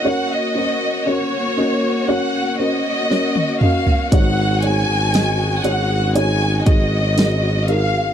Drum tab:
HH |----------------|x-x-x-x-x-x-x-x-|
SD |------------o---|----o-------o---|
T1 |-------------o--|----------------|
T2 |--------------o-|----------------|
FT |---------------o|----------------|
BD |----------------|o---------o-----|